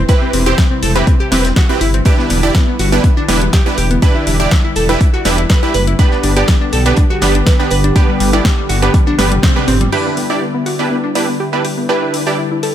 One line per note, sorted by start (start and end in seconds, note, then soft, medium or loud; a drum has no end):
0.00 2.02 C3 medium
0.00 9.89 G3 medium
0.00 2.02 E4 medium
0.00 5.95 B4 medium
0.09 0.43 C4 medium
0.09 0.43 E4 medium
0.09 0.43 G4 medium
0.09 0.43 B4 loud
0.09 0.18 B4 loud
0.09 kick loud
0.09 closed hi-hat medium
0.09 closed hi-hat soft
0.22 0.30 C4 medium
0.33 0.54 E1 medium
0.33 0.42 C4 medium
0.33 closed hi-hat medium
0.33 open hi-hat loud
0.46 0.57 C4 medium
0.46 0.57 E4 medium
0.46 0.57 G4 medium
0.46 0.55 G4 medium
0.46 0.57 C5 medium
0.46 closed hi-hat medium
0.58 0.67 C4 medium
0.58 kick loud
0.58 snare loud
0.58 closed hi-hat medium
0.58 closed hi-hat soft
0.71 0.79 C4 medium
0.83 1.03 E1 medium
0.83 0.92 A4 medium
0.83 closed hi-hat medium
0.83 open hi-hat medium
0.96 1.13 C4 medium
0.96 1.04 C4 medium
0.96 1.13 E4 medium
0.96 1.13 G4 medium
0.96 1.13 B4 medium
0.96 closed hi-hat medium
1.07 1.16 C4 medium
1.07 kick loud
1.07 closed hi-hat soft
1.07 closed hi-hat medium
1.20 1.28 G4 medium
1.31 1.52 E1 medium
1.31 1.43 C4 medium
1.31 1.41 C4 medium
1.31 1.43 E4 medium
1.31 1.43 G4 medium
1.31 1.43 B4 medium
1.31 snare medium
1.31 closed hi-hat medium
1.31 open hi-hat loud
1.45 1.53 C4 medium
1.45 snare loud
1.45 closed hi-hat medium
1.56 1.65 F#4 medium
1.56 kick loud
1.56 snare loud
1.56 closed hi-hat medium
1.56 closed hi-hat soft
1.69 1.80 C4 medium
1.69 1.77 C4 medium
1.69 1.80 E4 medium
1.69 1.80 G4 medium
1.69 1.80 B4 medium
1.81 2.01 G1 loud
1.81 1.90 E4 medium
1.81 closed hi-hat medium
1.81 open hi-hat medium
1.94 2.02 C4 medium
1.94 closed hi-hat medium
2.05 5.95 D3 medium
2.05 2.40 D4 medium
2.05 2.40 E4 medium
2.05 5.95 E4 medium
2.05 2.40 G4 medium
2.05 2.15 G4 loud
2.05 2.40 B4 loud
2.05 kick loud
2.05 closed hi-hat medium
2.05 closed hi-hat soft
2.19 2.27 B3 medium
2.19 snare medium
2.30 2.50 E1 medium
2.30 2.39 B3 medium
2.30 closed hi-hat medium
2.30 open hi-hat loud
2.43 2.53 D4 medium
2.43 2.53 E4 medium
2.43 2.51 E4 medium
2.43 2.53 G4 medium
2.43 2.53 D5 medium
2.43 closed hi-hat medium
2.55 2.64 B3 medium
2.55 kick loud
2.55 snare loud
2.55 closed hi-hat medium
2.68 2.76 B3 medium
2.79 2.99 G1 medium
2.79 2.88 F#4 medium
2.79 closed hi-hat medium
2.79 open hi-hat medium
2.92 3.00 B3 medium
2.92 3.09 D4 medium
2.92 3.09 E4 medium
2.92 3.09 G4 medium
2.92 3.09 B4 medium
2.92 snare medium
2.92 closed hi-hat medium
3.04 3.13 B3 medium
3.04 kick loud
3.04 closed hi-hat soft
3.04 closed hi-hat medium
3.17 3.25 D4 medium
3.28 3.49 E1 medium
3.28 3.38 B3 medium
3.28 3.40 D4 medium
3.28 3.40 E4 medium
3.28 3.40 G4 medium
3.28 3.40 B4 medium
3.28 snare medium
3.28 closed hi-hat medium
3.28 open hi-hat loud
3.42 3.50 B3 medium
3.42 closed hi-hat medium
3.53 3.62 G4 medium
3.53 kick loud
3.53 snare loud
3.53 closed hi-hat medium
3.53 closed hi-hat soft
3.66 3.74 B3 medium
3.66 3.76 D4 medium
3.66 3.76 E4 medium
3.66 3.76 G4 medium
3.66 3.76 B4 medium
3.78 3.98 E1 loud
3.78 3.87 G4 medium
3.78 closed hi-hat medium
3.78 open hi-hat medium
3.91 3.99 B3 medium
3.91 closed hi-hat medium
4.02 4.37 D4 loud
4.02 4.37 E4 medium
4.02 4.37 G4 medium
4.02 4.37 B4 loud
4.02 4.11 B4 loud
4.02 kick loud
4.02 closed hi-hat soft
4.02 closed hi-hat medium
4.15 4.23 E4 medium
4.27 4.47 E1 medium
4.27 4.36 E4 medium
4.27 closed hi-hat medium
4.27 open hi-hat medium
4.40 4.50 D4 medium
4.40 4.50 E4 medium
4.40 4.50 G4 medium
4.40 4.48 G4 medium
4.40 4.50 D5 medium
4.40 closed hi-hat medium
4.51 4.60 E4 medium
4.51 kick loud
4.51 snare loud
4.51 closed hi-hat medium
4.64 4.72 E4 medium
4.76 4.96 E1 medium
4.76 4.85 A4 medium
4.76 closed hi-hat medium
4.76 open hi-hat medium
4.89 5.06 D4 medium
4.89 4.97 E4 medium
4.89 5.06 E4 medium
4.89 5.06 G4 medium
4.89 5.06 B4 medium
4.89 closed hi-hat medium
5.01 5.10 E4 medium
5.01 kick loud
5.01 closed hi-hat soft
5.01 closed hi-hat medium
5.14 5.22 F#4 medium
5.25 5.45 E1 medium
5.25 5.37 D4 medium
5.25 5.37 E4 medium
5.25 5.34 E4 medium
5.25 5.37 G4 medium
5.25 5.37 B4 medium
5.25 snare medium
5.25 closed hi-hat medium
5.25 open hi-hat loud
5.38 5.46 E4 medium
5.38 closed hi-hat medium
5.49 5.59 B4 medium
5.49 kick loud
5.49 snare loud
5.49 snare medium
5.49 closed hi-hat medium
5.49 closed hi-hat soft
5.63 5.73 D4 medium
5.63 5.73 E4 medium
5.63 5.71 E4 medium
5.63 5.73 G4 medium
5.63 5.73 B4 medium
5.74 5.95 F#1 medium
5.74 5.83 B4 medium
5.74 snare soft
5.74 closed hi-hat medium
5.74 open hi-hat medium
5.87 5.95 E4 medium
5.87 closed hi-hat medium
5.99 9.88 D3 medium
5.99 6.33 B3 medium
5.99 9.89 B3 medium
5.99 6.33 D4 medium
5.99 6.33 G4 medium
5.99 9.89 G4 medium
5.99 6.33 B4 loud
5.99 6.08 B4 loud
5.99 kick loud
5.99 closed hi-hat medium
6.11 6.20 D4 medium
6.11 snare soft
6.23 6.44 G1 loud
6.23 6.33 D4 medium
6.23 closed hi-hat medium
6.23 open hi-hat medium
6.37 6.47 B3 medium
6.37 6.47 D4 medium
6.37 6.47 G4 medium
6.37 6.45 G4 medium
6.37 6.47 D5 medium
6.37 closed hi-hat medium
6.48 6.57 D4 medium
6.48 kick loud
6.48 snare loud
6.48 closed hi-hat medium
6.61 6.69 D4 medium
6.73 6.93 B1 medium
6.73 6.82 A4 medium
6.73 closed hi-hat medium
6.73 open hi-hat medium
6.86 7.03 B3 medium
6.86 7.03 D4 medium
6.86 6.94 D4 medium
6.86 7.03 G4 medium
6.86 7.03 B4 medium
6.86 snare medium
6.86 closed hi-hat medium
6.96 7.06 D4 medium
6.96 kick loud
6.96 closed hi-hat medium
7.10 7.18 F#4 medium
7.22 7.42 G1 medium
7.22 7.33 B3 medium
7.22 7.31 D4 medium
7.22 7.33 D4 medium
7.22 7.33 G4 medium
7.22 7.33 B4 medium
7.22 snare medium
7.22 closed hi-hat medium
7.22 open hi-hat loud
7.35 7.43 D4 medium
7.35 closed hi-hat medium
7.46 7.56 B4 medium
7.46 kick loud
7.46 snare loud
7.46 closed hi-hat soft
7.46 closed hi-hat medium
7.59 7.70 B3 medium
7.59 7.68 D4 medium
7.59 7.70 D4 medium
7.59 7.70 G4 medium
7.59 7.70 B4 medium
7.71 7.91 G1 loud
7.71 7.80 B4 medium
7.71 closed hi-hat medium
7.71 open hi-hat medium
7.84 7.92 D4 medium
7.84 closed hi-hat medium
7.96 8.30 B3 medium
7.96 8.30 D4 medium
7.96 8.30 G4 medium
7.96 8.05 G4 loud
7.96 8.30 B4 loud
7.96 kick loud
7.96 closed hi-hat medium
8.09 8.17 G3 medium
8.20 8.40 G1 medium
8.20 8.29 G3 medium
8.20 closed hi-hat medium
8.20 open hi-hat loud
8.33 8.44 B3 medium
8.33 8.44 D4 medium
8.33 8.41 E4 medium
8.33 8.44 G4 medium
8.33 8.44 D5 medium
8.33 closed hi-hat medium
8.45 8.54 G3 medium
8.45 kick loud
8.45 snare loud
8.45 closed hi-hat medium
8.58 8.66 G3 medium
8.69 8.90 G1 medium
8.69 8.78 F#4 medium
8.69 closed hi-hat medium
8.69 open hi-hat medium
8.82 8.90 G3 medium
8.82 8.99 B3 medium
8.82 8.99 D4 medium
8.82 8.99 G4 medium
8.82 8.99 B4 medium
8.82 closed hi-hat medium
8.94 9.03 G3 medium
8.94 kick loud
8.94 closed hi-hat medium
8.94 high tom medium
9.07 9.15 D4 medium
9.07 high tom medium
9.19 9.39 G1 medium
9.19 9.28 G3 medium
9.19 9.30 B3 medium
9.19 9.30 D4 medium
9.19 9.30 G4 medium
9.19 9.30 B4 loud
9.19 snare medium
9.19 closed hi-hat medium
9.19 open hi-hat loud
9.19 high tom medium
9.32 9.40 G3 medium
9.32 closed hi-hat medium
9.32 mid tom medium
9.43 9.52 C4 medium
9.43 kick loud
9.43 snare loud
9.43 closed hi-hat medium
9.43 mid tom medium
9.56 9.64 G3 medium
9.56 9.66 B3 medium
9.56 9.66 D4 medium
9.56 9.66 G4 medium
9.56 9.66 B4 medium
9.56 mid tom medium
9.68 9.88 G1 medium
9.68 9.77 C4 medium
9.68 snare soft
9.68 closed hi-hat medium
9.68 mid tom loud
9.68 open hi-hat medium
9.81 9.89 G3 medium
9.81 closed hi-hat medium
9.81 mid tom medium
9.92 12.75 D3 medium
9.92 12.75 G3 medium
9.92 10.27 D4 medium
9.92 10.27 E4 medium
9.92 12.75 E4 medium
9.92 10.01 G4 loud
9.92 10.27 G4 medium
9.92 10.27 B4 loud
9.92 12.75 B4 medium
9.92 crash medium
10.05 10.13 B3 medium
10.17 10.26 B3 medium
10.17 open hi-hat medium
10.30 10.40 D4 medium
10.30 10.40 E4 medium
10.30 10.38 E4 medium
10.30 10.40 G4 medium
10.30 10.40 D5 medium
10.41 10.51 B3 medium
10.54 10.63 B3 medium
10.66 10.75 F#4 medium
10.66 open hi-hat medium
10.79 10.87 B3 medium
10.79 10.96 D4 medium
10.79 10.96 E4 medium
10.79 10.96 G4 medium
10.79 10.96 B4 medium
10.91 11.00 B3 medium
11.04 11.12 D4 medium
11.15 11.24 B3 medium
11.15 11.27 D4 medium
11.15 11.27 E4 medium
11.15 11.27 G4 medium
11.15 11.27 B4 medium
11.15 open hi-hat medium
11.29 11.37 B3 medium
11.40 11.49 G4 medium
11.53 11.61 B3 medium
11.53 11.63 D4 medium
11.53 11.63 E4 medium
11.53 11.63 G4 medium
11.53 11.63 B4 medium
11.65 11.74 G4 medium
11.65 open hi-hat medium
11.78 11.86 B3 medium
11.89 12.24 D4 medium
11.89 12.24 E4 medium
11.89 12.24 G4 medium
11.89 12.24 B4 loud
11.89 11.98 B4 medium
12.02 12.10 E4 medium
12.14 12.23 E4 medium
12.14 open hi-hat medium
12.27 12.37 D4 medium
12.27 12.37 E4 medium
12.27 12.37 G4 medium
12.27 12.35 G4 medium
12.27 12.37 D5 medium
12.38 12.47 E4 medium
12.52 12.60 E4 medium
12.63 12.72 A4 medium
12.63 open hi-hat medium